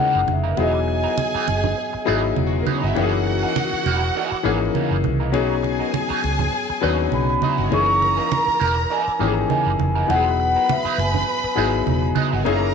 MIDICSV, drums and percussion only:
0, 0, Header, 1, 2, 480
1, 0, Start_track
1, 0, Tempo, 594059
1, 470, Time_signature, 4, 2, 24, 8
1, 10296, End_track
2, 0, Start_track
2, 0, Title_t, "Drums"
2, 224, Note_on_c, 9, 63, 68
2, 305, Note_off_c, 9, 63, 0
2, 462, Note_on_c, 9, 62, 43
2, 543, Note_off_c, 9, 62, 0
2, 950, Note_on_c, 9, 63, 68
2, 1031, Note_off_c, 9, 63, 0
2, 1193, Note_on_c, 9, 62, 49
2, 1274, Note_off_c, 9, 62, 0
2, 1322, Note_on_c, 9, 64, 64
2, 1403, Note_off_c, 9, 64, 0
2, 1910, Note_on_c, 9, 63, 66
2, 1991, Note_off_c, 9, 63, 0
2, 2153, Note_on_c, 9, 63, 71
2, 2234, Note_off_c, 9, 63, 0
2, 2395, Note_on_c, 9, 62, 44
2, 2475, Note_off_c, 9, 62, 0
2, 2877, Note_on_c, 9, 63, 72
2, 2958, Note_off_c, 9, 63, 0
2, 3119, Note_on_c, 9, 62, 51
2, 3200, Note_off_c, 9, 62, 0
2, 3837, Note_on_c, 9, 63, 62
2, 3918, Note_off_c, 9, 63, 0
2, 4071, Note_on_c, 9, 63, 66
2, 4152, Note_off_c, 9, 63, 0
2, 4313, Note_on_c, 9, 62, 43
2, 4393, Note_off_c, 9, 62, 0
2, 4558, Note_on_c, 9, 62, 33
2, 4639, Note_off_c, 9, 62, 0
2, 4798, Note_on_c, 9, 63, 67
2, 4879, Note_off_c, 9, 63, 0
2, 5040, Note_on_c, 9, 62, 49
2, 5121, Note_off_c, 9, 62, 0
2, 5162, Note_on_c, 9, 64, 67
2, 5243, Note_off_c, 9, 64, 0
2, 5750, Note_on_c, 9, 63, 64
2, 5831, Note_off_c, 9, 63, 0
2, 5994, Note_on_c, 9, 63, 71
2, 6075, Note_off_c, 9, 63, 0
2, 6125, Note_on_c, 9, 63, 50
2, 6206, Note_off_c, 9, 63, 0
2, 6237, Note_on_c, 9, 62, 44
2, 6318, Note_off_c, 9, 62, 0
2, 6483, Note_on_c, 9, 62, 32
2, 6564, Note_off_c, 9, 62, 0
2, 6720, Note_on_c, 9, 63, 71
2, 6801, Note_off_c, 9, 63, 0
2, 6960, Note_on_c, 9, 62, 49
2, 7041, Note_off_c, 9, 62, 0
2, 7674, Note_on_c, 9, 63, 65
2, 7755, Note_off_c, 9, 63, 0
2, 7914, Note_on_c, 9, 63, 69
2, 7995, Note_off_c, 9, 63, 0
2, 8160, Note_on_c, 9, 62, 46
2, 8241, Note_off_c, 9, 62, 0
2, 8641, Note_on_c, 9, 63, 74
2, 8722, Note_off_c, 9, 63, 0
2, 8882, Note_on_c, 9, 62, 50
2, 8963, Note_off_c, 9, 62, 0
2, 9001, Note_on_c, 9, 64, 64
2, 9082, Note_off_c, 9, 64, 0
2, 9589, Note_on_c, 9, 63, 68
2, 9670, Note_off_c, 9, 63, 0
2, 9822, Note_on_c, 9, 63, 73
2, 9903, Note_off_c, 9, 63, 0
2, 10070, Note_on_c, 9, 62, 44
2, 10151, Note_off_c, 9, 62, 0
2, 10296, End_track
0, 0, End_of_file